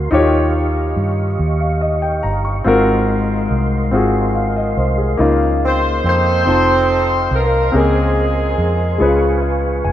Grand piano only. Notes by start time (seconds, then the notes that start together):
Already playing: C4 F#4 G#4 F5
0.11 D#3 D#4 F4 G4 C#5
1.60 F5
1.81 D#5
2.02 G5
2.23 A#5
2.45 C#6
2.64 G#2 C4 F4 F#4 A#4
3.91 C4 F4 F#4 G#4
4.35 F5
4.56 D#5
4.77 C5
4.98 G#4
5.17 C#3 A#3 D#4 F4
6.45 C4 D#4 F4 A5
7.72 C#3 A#3 C4 G#4 A#4
8.98 C#3 G#3 F4 G#4 B4
9.42 F5
9.84 G#5